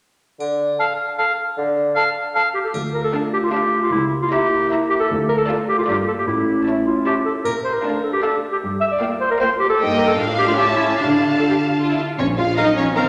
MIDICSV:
0, 0, Header, 1, 13, 480
1, 0, Start_track
1, 0, Key_signature, -1, "minor"
1, 0, Tempo, 392670
1, 490, Time_signature, 3, 2, 24, 8
1, 15998, End_track
2, 0, Start_track
2, 0, Title_t, "Flute"
2, 0, Program_c, 0, 73
2, 967, Note_on_c, 0, 81, 34
2, 1053, Note_off_c, 0, 81, 0
2, 1448, Note_on_c, 0, 81, 36
2, 1533, Note_off_c, 0, 81, 0
2, 2400, Note_on_c, 0, 81, 44
2, 2486, Note_off_c, 0, 81, 0
2, 2876, Note_on_c, 0, 81, 43
2, 2963, Note_off_c, 0, 81, 0
2, 15998, End_track
3, 0, Start_track
3, 0, Title_t, "Violin section"
3, 0, Program_c, 1, 48
3, 3832, Note_on_c, 1, 81, 47
3, 4193, Note_off_c, 1, 81, 0
3, 4313, Note_on_c, 1, 81, 44
3, 4673, Note_off_c, 1, 81, 0
3, 5280, Note_on_c, 1, 82, 57
3, 5633, Note_off_c, 1, 82, 0
3, 5765, Note_on_c, 1, 82, 59
3, 6112, Note_off_c, 1, 82, 0
3, 6705, Note_on_c, 1, 81, 56
3, 7060, Note_off_c, 1, 81, 0
3, 7187, Note_on_c, 1, 82, 46
3, 7543, Note_off_c, 1, 82, 0
3, 8146, Note_on_c, 1, 81, 41
3, 8505, Note_off_c, 1, 81, 0
3, 8630, Note_on_c, 1, 81, 38
3, 8989, Note_off_c, 1, 81, 0
3, 9595, Note_on_c, 1, 81, 44
3, 9950, Note_off_c, 1, 81, 0
3, 10073, Note_on_c, 1, 81, 44
3, 10428, Note_off_c, 1, 81, 0
3, 11028, Note_on_c, 1, 79, 51
3, 11382, Note_off_c, 1, 79, 0
3, 11502, Note_on_c, 1, 79, 54
3, 11859, Note_off_c, 1, 79, 0
3, 11979, Note_on_c, 1, 79, 57
3, 12424, Note_off_c, 1, 79, 0
3, 12453, Note_on_c, 1, 77, 62
3, 12936, Note_off_c, 1, 77, 0
3, 12940, Note_on_c, 1, 81, 53
3, 13414, Note_off_c, 1, 81, 0
3, 13428, Note_on_c, 1, 81, 42
3, 14621, Note_off_c, 1, 81, 0
3, 14893, Note_on_c, 1, 73, 58
3, 14988, Note_off_c, 1, 73, 0
3, 15132, Note_on_c, 1, 77, 57
3, 15364, Note_off_c, 1, 77, 0
3, 15364, Note_on_c, 1, 75, 65
3, 15600, Note_off_c, 1, 75, 0
3, 15608, Note_on_c, 1, 73, 58
3, 15703, Note_off_c, 1, 73, 0
3, 15856, Note_on_c, 1, 72, 53
3, 15998, Note_off_c, 1, 72, 0
3, 15998, End_track
4, 0, Start_track
4, 0, Title_t, "Oboe"
4, 0, Program_c, 2, 68
4, 978, Note_on_c, 2, 77, 35
4, 1148, Note_off_c, 2, 77, 0
4, 1448, Note_on_c, 2, 77, 37
4, 1618, Note_off_c, 2, 77, 0
4, 2389, Note_on_c, 2, 77, 44
4, 2563, Note_off_c, 2, 77, 0
4, 2870, Note_on_c, 2, 77, 42
4, 3045, Note_off_c, 2, 77, 0
4, 15998, End_track
5, 0, Start_track
5, 0, Title_t, "Violin section"
5, 0, Program_c, 3, 48
5, 3830, Note_on_c, 3, 77, 47
5, 4191, Note_off_c, 3, 77, 0
5, 4316, Note_on_c, 3, 77, 48
5, 4674, Note_off_c, 3, 77, 0
5, 5284, Note_on_c, 3, 76, 57
5, 5635, Note_off_c, 3, 76, 0
5, 5755, Note_on_c, 3, 76, 58
5, 6107, Note_off_c, 3, 76, 0
5, 6699, Note_on_c, 3, 74, 56
5, 7057, Note_off_c, 3, 74, 0
5, 7176, Note_on_c, 3, 74, 48
5, 7537, Note_off_c, 3, 74, 0
5, 8143, Note_on_c, 3, 73, 42
5, 8504, Note_off_c, 3, 73, 0
5, 8624, Note_on_c, 3, 73, 41
5, 8986, Note_off_c, 3, 73, 0
5, 9591, Note_on_c, 3, 77, 43
5, 9948, Note_off_c, 3, 77, 0
5, 10061, Note_on_c, 3, 77, 44
5, 10421, Note_off_c, 3, 77, 0
5, 11021, Note_on_c, 3, 77, 51
5, 11378, Note_off_c, 3, 77, 0
5, 11503, Note_on_c, 3, 77, 57
5, 11859, Note_off_c, 3, 77, 0
5, 11986, Note_on_c, 3, 75, 56
5, 12427, Note_off_c, 3, 75, 0
5, 12457, Note_on_c, 3, 77, 57
5, 12928, Note_off_c, 3, 77, 0
5, 12936, Note_on_c, 3, 76, 55
5, 13418, Note_on_c, 3, 77, 46
5, 13422, Note_off_c, 3, 76, 0
5, 14640, Note_off_c, 3, 77, 0
5, 15364, Note_on_c, 3, 77, 45
5, 15364, Note_on_c, 3, 82, 41
5, 15462, Note_off_c, 3, 77, 0
5, 15462, Note_off_c, 3, 82, 0
5, 15841, Note_on_c, 3, 77, 41
5, 15841, Note_on_c, 3, 82, 41
5, 15938, Note_off_c, 3, 77, 0
5, 15939, Note_off_c, 3, 82, 0
5, 15998, End_track
6, 0, Start_track
6, 0, Title_t, "Clarinet"
6, 0, Program_c, 4, 71
6, 970, Note_on_c, 4, 69, 34
6, 1142, Note_off_c, 4, 69, 0
6, 1451, Note_on_c, 4, 69, 38
6, 1620, Note_off_c, 4, 69, 0
6, 2395, Note_on_c, 4, 69, 44
6, 2568, Note_off_c, 4, 69, 0
6, 2876, Note_on_c, 4, 69, 41
6, 2985, Note_off_c, 4, 69, 0
6, 3107, Note_on_c, 4, 67, 62
6, 3163, Note_off_c, 4, 67, 0
6, 3232, Note_on_c, 4, 69, 45
6, 3396, Note_off_c, 4, 69, 0
6, 3588, Note_on_c, 4, 70, 58
6, 3704, Note_off_c, 4, 70, 0
6, 3712, Note_on_c, 4, 69, 55
6, 3876, Note_off_c, 4, 69, 0
6, 4072, Note_on_c, 4, 67, 57
6, 4128, Note_off_c, 4, 67, 0
6, 4193, Note_on_c, 4, 65, 54
6, 4294, Note_off_c, 4, 65, 0
6, 4301, Note_on_c, 4, 67, 62
6, 4663, Note_off_c, 4, 67, 0
6, 4673, Note_on_c, 4, 65, 54
6, 4780, Note_off_c, 4, 65, 0
6, 4787, Note_on_c, 4, 64, 62
6, 4951, Note_off_c, 4, 64, 0
6, 5157, Note_on_c, 4, 65, 60
6, 5211, Note_off_c, 4, 65, 0
6, 5272, Note_on_c, 4, 67, 68
6, 5741, Note_off_c, 4, 67, 0
6, 5986, Note_on_c, 4, 67, 73
6, 6040, Note_off_c, 4, 67, 0
6, 6107, Note_on_c, 4, 69, 72
6, 6268, Note_off_c, 4, 69, 0
6, 6465, Note_on_c, 4, 70, 73
6, 6518, Note_off_c, 4, 70, 0
6, 6575, Note_on_c, 4, 69, 64
6, 6738, Note_off_c, 4, 69, 0
6, 6947, Note_on_c, 4, 67, 61
6, 7062, Note_off_c, 4, 67, 0
6, 7069, Note_on_c, 4, 65, 58
6, 7121, Note_off_c, 4, 65, 0
6, 7186, Note_on_c, 4, 67, 64
6, 7293, Note_off_c, 4, 67, 0
6, 7427, Note_on_c, 4, 69, 57
6, 7480, Note_off_c, 4, 69, 0
6, 7560, Note_on_c, 4, 67, 50
6, 7611, Note_off_c, 4, 67, 0
6, 7669, Note_on_c, 4, 64, 56
6, 8392, Note_on_c, 4, 65, 51
6, 8411, Note_off_c, 4, 64, 0
6, 8626, Note_off_c, 4, 65, 0
6, 8633, Note_on_c, 4, 67, 53
6, 8741, Note_off_c, 4, 67, 0
6, 8861, Note_on_c, 4, 69, 53
6, 8972, Note_off_c, 4, 69, 0
6, 9102, Note_on_c, 4, 70, 62
6, 9212, Note_off_c, 4, 70, 0
6, 9338, Note_on_c, 4, 72, 54
6, 9451, Note_on_c, 4, 70, 49
6, 9469, Note_off_c, 4, 72, 0
6, 9808, Note_off_c, 4, 70, 0
6, 9815, Note_on_c, 4, 69, 51
6, 9928, Note_off_c, 4, 69, 0
6, 9935, Note_on_c, 4, 67, 50
6, 9993, Note_off_c, 4, 67, 0
6, 10050, Note_on_c, 4, 69, 57
6, 10216, Note_off_c, 4, 69, 0
6, 10420, Note_on_c, 4, 67, 48
6, 10476, Note_off_c, 4, 67, 0
6, 10765, Note_on_c, 4, 76, 65
6, 10824, Note_off_c, 4, 76, 0
6, 10898, Note_on_c, 4, 74, 52
6, 11061, Note_off_c, 4, 74, 0
6, 11252, Note_on_c, 4, 72, 67
6, 11371, Note_off_c, 4, 72, 0
6, 11378, Note_on_c, 4, 70, 64
6, 11433, Note_off_c, 4, 70, 0
6, 11494, Note_on_c, 4, 72, 75
6, 11604, Note_off_c, 4, 72, 0
6, 11728, Note_on_c, 4, 67, 74
6, 11844, Note_off_c, 4, 67, 0
6, 11852, Note_on_c, 4, 69, 75
6, 12015, Note_off_c, 4, 69, 0
6, 12193, Note_on_c, 4, 70, 77
6, 12309, Note_off_c, 4, 70, 0
6, 12316, Note_on_c, 4, 69, 76
6, 12483, Note_off_c, 4, 69, 0
6, 12691, Note_on_c, 4, 67, 71
6, 12747, Note_off_c, 4, 67, 0
6, 12806, Note_on_c, 4, 65, 66
6, 12863, Note_off_c, 4, 65, 0
6, 12927, Note_on_c, 4, 67, 74
6, 13039, Note_off_c, 4, 67, 0
6, 13151, Note_on_c, 4, 64, 61
6, 13267, Note_off_c, 4, 64, 0
6, 13415, Note_on_c, 4, 62, 55
6, 14614, Note_off_c, 4, 62, 0
6, 15998, End_track
7, 0, Start_track
7, 0, Title_t, "Viola section"
7, 0, Program_c, 5, 48
7, 3839, Note_on_c, 5, 62, 45
7, 4197, Note_off_c, 5, 62, 0
7, 4312, Note_on_c, 5, 62, 46
7, 4672, Note_off_c, 5, 62, 0
7, 5280, Note_on_c, 5, 64, 57
7, 5633, Note_off_c, 5, 64, 0
7, 5757, Note_on_c, 5, 64, 58
7, 6108, Note_off_c, 5, 64, 0
7, 6703, Note_on_c, 5, 65, 57
7, 7060, Note_off_c, 5, 65, 0
7, 7185, Note_on_c, 5, 65, 48
7, 7541, Note_off_c, 5, 65, 0
7, 8151, Note_on_c, 5, 64, 42
7, 8508, Note_off_c, 5, 64, 0
7, 8640, Note_on_c, 5, 64, 40
7, 8994, Note_off_c, 5, 64, 0
7, 9595, Note_on_c, 5, 62, 43
7, 9949, Note_off_c, 5, 62, 0
7, 10070, Note_on_c, 5, 62, 44
7, 10426, Note_off_c, 5, 62, 0
7, 11032, Note_on_c, 5, 58, 53
7, 11384, Note_off_c, 5, 58, 0
7, 11508, Note_on_c, 5, 58, 55
7, 11862, Note_off_c, 5, 58, 0
7, 11980, Note_on_c, 5, 58, 53
7, 12424, Note_off_c, 5, 58, 0
7, 12458, Note_on_c, 5, 62, 59
7, 12929, Note_off_c, 5, 62, 0
7, 12937, Note_on_c, 5, 61, 53
7, 13422, Note_off_c, 5, 61, 0
7, 13423, Note_on_c, 5, 62, 40
7, 13854, Note_off_c, 5, 62, 0
7, 13908, Note_on_c, 5, 69, 52
7, 13958, Note_off_c, 5, 69, 0
7, 14040, Note_on_c, 5, 67, 42
7, 14138, Note_off_c, 5, 67, 0
7, 14404, Note_on_c, 5, 65, 41
7, 14521, Note_off_c, 5, 65, 0
7, 14535, Note_on_c, 5, 64, 34
7, 14581, Note_off_c, 5, 64, 0
7, 14651, Note_on_c, 5, 65, 35
7, 14746, Note_off_c, 5, 65, 0
7, 15369, Note_on_c, 5, 70, 42
7, 15370, Note_on_c, 5, 77, 43
7, 15467, Note_off_c, 5, 70, 0
7, 15468, Note_off_c, 5, 77, 0
7, 15851, Note_on_c, 5, 70, 41
7, 15856, Note_on_c, 5, 77, 44
7, 15949, Note_off_c, 5, 70, 0
7, 15953, Note_off_c, 5, 77, 0
7, 15998, End_track
8, 0, Start_track
8, 0, Title_t, "French horn section"
8, 0, Program_c, 6, 60
8, 3347, Note_on_c, 6, 65, 40
8, 3350, Note_on_c, 6, 57, 42
8, 4744, Note_off_c, 6, 65, 0
8, 4745, Note_off_c, 6, 57, 0
8, 4785, Note_on_c, 6, 58, 49
8, 4796, Note_on_c, 6, 64, 50
8, 6220, Note_off_c, 6, 58, 0
8, 6226, Note_off_c, 6, 64, 0
8, 6232, Note_on_c, 6, 65, 54
8, 6242, Note_on_c, 6, 57, 54
8, 7171, Note_off_c, 6, 57, 0
8, 7203, Note_on_c, 6, 58, 45
8, 7666, Note_off_c, 6, 65, 0
8, 7674, Note_off_c, 6, 58, 0
8, 7682, Note_on_c, 6, 57, 40
8, 7682, Note_on_c, 6, 61, 41
8, 8856, Note_off_c, 6, 61, 0
8, 8880, Note_off_c, 6, 57, 0
8, 9589, Note_on_c, 6, 57, 36
8, 9590, Note_on_c, 6, 62, 37
8, 9762, Note_off_c, 6, 57, 0
8, 9763, Note_off_c, 6, 62, 0
8, 10071, Note_on_c, 6, 62, 34
8, 10072, Note_on_c, 6, 57, 36
8, 10243, Note_off_c, 6, 62, 0
8, 10244, Note_off_c, 6, 57, 0
8, 11010, Note_on_c, 6, 65, 41
8, 11017, Note_on_c, 6, 58, 42
8, 11185, Note_off_c, 6, 65, 0
8, 11191, Note_off_c, 6, 58, 0
8, 11518, Note_on_c, 6, 58, 45
8, 11519, Note_on_c, 6, 65, 45
8, 11687, Note_off_c, 6, 58, 0
8, 11688, Note_off_c, 6, 65, 0
8, 11993, Note_on_c, 6, 63, 50
8, 11997, Note_on_c, 6, 58, 53
8, 12162, Note_off_c, 6, 63, 0
8, 12165, Note_off_c, 6, 58, 0
8, 12467, Note_on_c, 6, 65, 51
8, 12472, Note_on_c, 6, 62, 51
8, 12638, Note_off_c, 6, 65, 0
8, 12642, Note_off_c, 6, 62, 0
8, 12938, Note_on_c, 6, 64, 47
8, 12944, Note_on_c, 6, 61, 49
8, 13113, Note_off_c, 6, 64, 0
8, 13117, Note_off_c, 6, 61, 0
8, 13923, Note_on_c, 6, 62, 34
8, 13925, Note_on_c, 6, 65, 33
8, 14096, Note_off_c, 6, 62, 0
8, 14098, Note_off_c, 6, 65, 0
8, 14389, Note_on_c, 6, 65, 30
8, 14395, Note_on_c, 6, 62, 32
8, 14567, Note_off_c, 6, 65, 0
8, 14572, Note_off_c, 6, 62, 0
8, 14886, Note_on_c, 6, 53, 60
8, 15109, Note_off_c, 6, 53, 0
8, 15127, Note_on_c, 6, 56, 57
8, 15367, Note_off_c, 6, 56, 0
8, 15373, Note_on_c, 6, 54, 56
8, 15605, Note_off_c, 6, 54, 0
8, 15616, Note_on_c, 6, 53, 55
8, 15721, Note_off_c, 6, 53, 0
8, 15857, Note_on_c, 6, 51, 52
8, 15998, Note_off_c, 6, 51, 0
8, 15998, End_track
9, 0, Start_track
9, 0, Title_t, "Bassoon"
9, 0, Program_c, 7, 70
9, 485, Note_on_c, 7, 50, 43
9, 888, Note_off_c, 7, 50, 0
9, 1924, Note_on_c, 7, 50, 55
9, 2318, Note_off_c, 7, 50, 0
9, 15998, End_track
10, 0, Start_track
10, 0, Title_t, "Cello section"
10, 0, Program_c, 8, 48
10, 3356, Note_on_c, 8, 38, 48
10, 3737, Note_off_c, 8, 38, 0
10, 4797, Note_on_c, 8, 37, 58
10, 5175, Note_off_c, 8, 37, 0
10, 6223, Note_on_c, 8, 38, 66
10, 6601, Note_off_c, 8, 38, 0
10, 7178, Note_on_c, 8, 43, 57
10, 7560, Note_off_c, 8, 43, 0
10, 7658, Note_on_c, 8, 45, 49
10, 8043, Note_off_c, 8, 45, 0
10, 9108, Note_on_c, 8, 46, 47
10, 9490, Note_off_c, 8, 46, 0
10, 10542, Note_on_c, 8, 43, 54
10, 10923, Note_off_c, 8, 43, 0
10, 11975, Note_on_c, 8, 43, 57
10, 12422, Note_off_c, 8, 43, 0
10, 12451, Note_on_c, 8, 45, 63
10, 13416, Note_on_c, 8, 50, 48
10, 13420, Note_off_c, 8, 45, 0
10, 14639, Note_off_c, 8, 50, 0
10, 14884, Note_on_c, 8, 61, 63
10, 14980, Note_off_c, 8, 61, 0
10, 15129, Note_on_c, 8, 65, 63
10, 15224, Note_off_c, 8, 65, 0
10, 15368, Note_on_c, 8, 63, 69
10, 15602, Note_off_c, 8, 63, 0
10, 15606, Note_on_c, 8, 61, 67
10, 15840, Note_off_c, 8, 61, 0
10, 15847, Note_on_c, 8, 60, 66
10, 15998, Note_off_c, 8, 60, 0
10, 15998, End_track
11, 0, Start_track
11, 0, Title_t, "Double bass section"
11, 0, Program_c, 10, 48
11, 14891, Note_on_c, 10, 34, 51
11, 15289, Note_off_c, 10, 34, 0
11, 15998, End_track
12, 0, Start_track
12, 0, Title_t, "Tuba"
12, 0, Program_c, 11, 58
12, 14887, Note_on_c, 11, 34, 54
12, 15287, Note_off_c, 11, 34, 0
12, 15998, End_track
13, 0, Start_track
13, 0, Title_t, "Drums"
13, 494, Note_on_c, 9, 81, 28
13, 616, Note_off_c, 9, 81, 0
13, 3351, Note_on_c, 9, 81, 33
13, 3474, Note_off_c, 9, 81, 0
13, 9113, Note_on_c, 9, 81, 34
13, 9235, Note_off_c, 9, 81, 0
13, 15998, End_track
0, 0, End_of_file